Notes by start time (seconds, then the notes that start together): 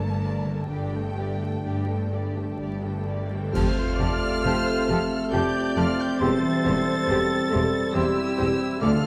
Already playing: G1 G2 D3 F3 A3 A#3 D4 A4 A#4 A5
0.20 A3 A#3 D4 A#4 D5
0.44 D3 A3 A#3 A4 A#4
0.67 G1 G2 G3 A3 D4 G4 D5 G5
0.92 D3 A3 G4 A4 G5
1.16 G3 A3 D4 G4 D5
1.40 A3 D4 G4 A4 G5
1.63 G1 G2 G3 D4 G4 A4 D5
1.87 A3 D4 G4 A4 G5
2.10 G3 D4 G4 A4 D5
2.35 A3 D4 G4 A4 G5
2.58 G1 G2 G3 A3 D4 G4 D5
2.83 D3 A3 G4 A4 G5
3.07 G3 A3 D4 G4 D5
3.30 D3 A3 G4 A4 G5
3.52 F1 F2 F3 A3 C4 F4 G4 A4 C5 A5 F6, concert bass drum, crash
3.76 F4
3.98 F1 F2 C4 G4 A4 D5 A5
4.22 G4
4.43 F1 F2 G4 A4 C5 A5
4.67 C5
4.88 F1 F2 G4 A4 A5
5.10 G4
5.31 F1 F2 C4 G4 A4 D5 A5 G6
5.36 G4
5.54 F4
5.76 F1 F2 C4 F4 G4 A4 A5 F6
5.98 F4 G4 G6
6.20 E1 E2 E3 G3 G4 A4 C5 C6 A6
6.43 E4
6.64 E1 E2 C4 G4 C5 C6
6.88 G4
7.08 E1 E2 G4 A4 C5 C6
7.31 C5
7.52 E1 E2 G4 C5 C6
7.74 G4
7.94 E1 E2 C4 E4 G4 C5 C6 E6
8.18 E4
8.36 E2 C4 G4 C5 C6
8.41 E1
8.62 E4
8.81 D2 D3 D4 F4 A4 D5 D6 F6